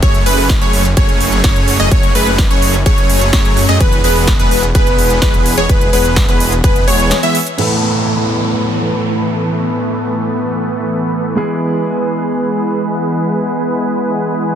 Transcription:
0.03 detuned saw bass F#1, supersaw synth F#3 A3 C#4 G#4 C#5, digital synth lead C#5, kick, closed hi-hat
0.14 closed hi-hat
0.26 detuned saw bass F#1, supersaw synth F#3 A3 C#4 G#4 B4, digital synth lead B4, open hi-hat
0.38 open hi-hat
0.49 kick, snare, closed hi-hat
0.62 detuned saw bass F#1, supersaw synth F#3 A3 C#4 G#4 C#5, digital synth lead C#5, closed hi-hat
0.73 open hi-hat
0.85 closed hi-hat
0.97 detuned saw bass F#1, supersaw synth F#3 A3 C#4 G#4 C#5, digital synth lead C#5, kick, closed hi-hat
1.09 closed hi-hat
1.20 open hi-hat
1.32 closed hi-hat
1.44 detuned saw bass F#1, supersaw synth F#3 A3 C#4 G#4 C#5, digital synth lead C#5, kick, snare, closed hi-hat
1.56 closed hi-hat
1.68 open hi-hat
1.80 detuned saw bass F#1, supersaw synth F#3 A3 C#4 G#4 D#5, digital synth lead D#5, closed hi-hat
1.91 detuned saw bass F#1, supersaw synth F#3 C#4 C#5, digital synth lead C#5, kick, closed hi-hat
2.03 closed hi-hat
2.15 detuned saw bass F#1, supersaw synth F#3 A3 C#4 G#4 B4, digital synth lead B4, open hi-hat
2.27 closed hi-hat
2.38 kick, snare, closed hi-hat
2.51 detuned saw bass F#1, supersaw synth F#3 A3 C#4 G#4 C#5, digital synth lead C#5, closed hi-hat
2.62 open hi-hat
2.74 closed hi-hat
2.86 detuned saw bass F#1, supersaw synth F#3 A3 C#4 G#4 C#5, digital synth lead C#5, kick, closed hi-hat
2.98 closed hi-hat
3.10 open hi-hat
3.21 closed hi-hat
3.33 detuned saw bass F#2, supersaw synth F#3 A3 C#4 G#4 C#5, digital synth lead C#5, kick, snare, closed hi-hat
3.45 closed hi-hat
3.57 open hi-hat
3.69 detuned saw bass F#2, supersaw synth F#3 A3 C#4 G#4 D#5, digital synth lead D#5, closed hi-hat
3.80 detuned saw bass E1, supersaw synth E3 G#3 B3 G#4 B4, digital synth lead B4, kick, closed hi-hat
3.92 closed hi-hat
4.04 detuned saw bass E1, supersaw synth E3 G#3 B3 G#4 B4, digital synth lead B4, open hi-hat
4.16 open hi-hat
4.27 kick, snare, closed hi-hat
4.39 detuned saw bass E1, supersaw synth E3 G#3 B3 G#4 B4, digital synth lead B4, closed hi-hat
4.51 open hi-hat
4.63 closed hi-hat
4.75 detuned saw bass E1, supersaw synth E3 G#3 B3 G#4 B4, digital synth lead B4, kick, closed hi-hat
4.87 closed hi-hat
4.99 open hi-hat
5.10 closed hi-hat
5.22 detuned saw bass E1, supersaw synth E3 G#3 B3 G#4 B4, digital synth lead B4, kick, snare, closed hi-hat
5.34 closed hi-hat
5.46 open hi-hat
5.58 detuned saw bass E1, supersaw synth E3 G#3 B3 G#4 C#5, digital synth lead C#5, closed hi-hat
5.69 detuned saw bass E1, supersaw synth E3 G#3 B3 G#4 B4, digital synth lead B4, kick, closed hi-hat
5.81 closed hi-hat
5.93 detuned saw bass E1, supersaw synth E3 G#3 B3 G#4 B4, digital synth lead B4, open hi-hat
6.05 closed hi-hat
6.16 kick, snare, closed hi-hat
6.29 detuned saw bass E1, supersaw synth E3 G#3 B3 G#4 B4, digital synth lead B4, closed hi-hat
6.40 open hi-hat
6.52 closed hi-hat
6.64 detuned saw bass E1, supersaw synth E3 G#3 B3 G#4 B4, digital synth lead B4, kick, closed hi-hat
6.76 closed hi-hat
6.88 detuned saw bass E1, supersaw synth E3 G#3 B3 G#4 C#5, digital synth lead C#5, open hi-hat
6.99 closed hi-hat
7.11 snare, closed hi-hat
7.23 supersaw synth E3 G#3 B3 G#4 E5, digital synth lead E5, closed hi-hat
7.35 open hi-hat
7.47 closed hi-hat
7.57 grand piano A2 A3 B3 E4 A4, supersaw synth E3 A3 B3 A4 B4, crash, downlifter
11.35 supersaw synth E3 G#3 B3 G#4 B4, grand piano G#3 B3 E4 G#4

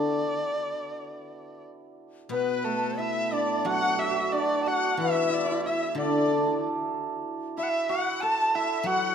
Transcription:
Already playing: guzheng D3 E3, hammered dulcimer B3 D4 E4 F#4 A4, erhu D5
2.29 guzheng B2, hammered dulcimer B3, erhu B4, dizi B4
2.64 hammered dulcimer A3, erhu A4
2.98 hammered dulcimer E4, erhu E5, dizi E5
3.32 hammered dulcimer D4, erhu D5, dizi D5
3.65 guzheng F#3, hammered dulcimer F#4, erhu F#5, dizi F#5
3.74 hammered dulcimer F#4
3.81 hammered dulcimer F#4
3.89 hammered dulcimer F#4
3.97 hammered dulcimer F#4, erhu E5
4.02 hammered dulcimer F#4, dizi E5
4.10 hammered dulcimer F#4
4.18 hammered dulcimer F#4
4.32 hammered dulcimer D4, erhu D5, dizi D5
4.62 dizi A5
4.66 hammered dulcimer F#4, erhu F#5, dizi F#5
4.97 guzheng E3, hammered dulcimer E4, dizi E5, erhu E5
5.08 hammered dulcimer E4
5.15 hammered dulcimer E4
5.22 hammered dulcimer E4
5.30 hammered dulcimer E4, erhu D5
5.37 hammered dulcimer E4
5.45 hammered dulcimer E4
5.51 hammered dulcimer E4
5.66 hammered dulcimer E4, erhu E5, dizi E5
5.95 guzheng D3, hammered dulcimer D4, erhu D5, dizi D5
6.05 hammered dulcimer D4
6.12 hammered dulcimer D4
6.19 hammered dulcimer D4
6.25 hammered dulcimer D4
6.32 hammered dulcimer D4
6.38 hammered dulcimer D4
6.46 hammered dulcimer D4
7.57 hammered dulcimer E4, dizi E5, erhu E5
7.63 dizi F#5
7.70 dizi E5
7.88 hammered dulcimer F#4, dizi F#5, erhu F#5
8.21 hammered dulcimer A4, dizi A5, erhu A5
8.55 hammered dulcimer E4, erhu E5, dizi E5
8.83 guzheng F#3, hammered dulcimer F#4, erhu F#5, dizi F#5

